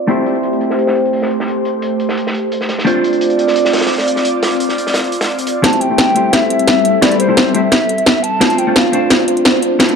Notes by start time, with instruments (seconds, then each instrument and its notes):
0.07 hollow-body jazz guitar A3 C4 E4 G4 C5, analog synth pad A3 G4 C5, closed hi-hat
0.26 closed hi-hat
0.35 closed hi-hat
0.43 closed hi-hat
0.53 closed hi-hat
0.61 closed hi-hat
0.70 snare
0.78 closed hi-hat
0.87 snare
0.95 closed hi-hat
1.05 closed hi-hat
1.13 open hi-hat
1.22 snare
1.31 closed hi-hat
1.40 snare
1.48 closed hi-hat
1.65 closed hi-hat
1.82 closed hi-hat
2.00 closed hi-hat
2.09 snare
2.17 closed hi-hat
2.27 snare
2.34 closed hi-hat
2.52 closed hi-hat
2.61 snare
2.69 snare, closed hi-hat
2.79 snare
2.85 hollow-body jazz guitar A3 C4 D4 F4 C5, analog synth pad C4 F4 D5, closed hi-hat
3.04 closed hi-hat
3.13 closed hi-hat
3.21 closed hi-hat
3.30 closed hi-hat
3.39 closed hi-hat
3.48 snare
3.56 closed hi-hat
3.65 snare
3.73 snare, closed hi-hat
3.78 snare, closed hi-hat
3.81 snare, closed hi-hat
3.87 snare, closed hi-hat
3.91 open hi-hat
3.98 snare
4.07 closed hi-hat
4.16 snare
4.25 closed hi-hat
4.43 snare, closed hi-hat
4.52 closed hi-hat
4.60 closed hi-hat
4.69 snare
4.78 closed hi-hat
4.87 snare
4.94 snare, closed hi-hat
5.04 closed hi-hat
5.12 closed hi-hat
5.21 snare, closed hi-hat
5.30 closed hi-hat
5.38 closed hi-hat
5.47 closed hi-hat
5.63 sub bass A1, analog synth pad G3 C4 A4, hollow-body jazz guitar A3 C4 E4 G4 C5, flute A5, kick, snare, closed hi-hat
5.73 closed hi-hat
5.81 flute G5, closed hi-hat
5.89 hollow-body jazz guitar A3 C4 E4 G4 C5
5.98 kick, snare, closed hi-hat
6.14 sub bass D2, hollow-body jazz guitar A3 C4 E4 G4 C5, closed hi-hat
6.33 flute E5, kick, snare, closed hi-hat
6.50 sub bass B1, closed hi-hat
6.59 closed hi-hat
6.67 kick, snare, closed hi-hat
6.85 closed hi-hat
7.01 hollow-body jazz guitar A3 C4 E4 G4 B4, flute D5, kick, snare, closed hi-hat
7.12 closed hi-hat
7.20 flute C5, closed hi-hat
7.28 hollow-body jazz guitar A3 C4 E4 G4 C5
7.37 kick, snare, closed hi-hat
7.54 sub bass D2, hollow-body jazz guitar A3 C4 E4 G4 C5, flute E5, closed hi-hat
7.72 sub bass E1, kick, snare, closed hi-hat
7.89 closed hi-hat
7.98 closed hi-hat
8.06 kick, snare, closed hi-hat
8.23 flute A5, closed hi-hat
8.40 sub bass D2, hollow-body jazz guitar A3 C4 D4 F4 C5, analog synth pad D4 F4 C5, kick, snare, closed hi-hat
8.50 closed hi-hat
8.58 flute G5, closed hi-hat
8.67 hollow-body jazz guitar A3 C4 D4 F4 C5
8.76 flute F5, kick, snare, closed hi-hat
8.92 sub bass G2, hollow-body jazz guitar A3 C4 D4 F4 C5, closed hi-hat
9.10 kick, snare, closed hi-hat
9.28 sub bass E2, closed hi-hat
9.37 closed hi-hat
9.45 kick, snare, closed hi-hat
9.62 closed hi-hat
9.79 hollow-body jazz guitar A3 C4 D4 F4 B4, kick, snare, closed hi-hat
9.89 closed hi-hat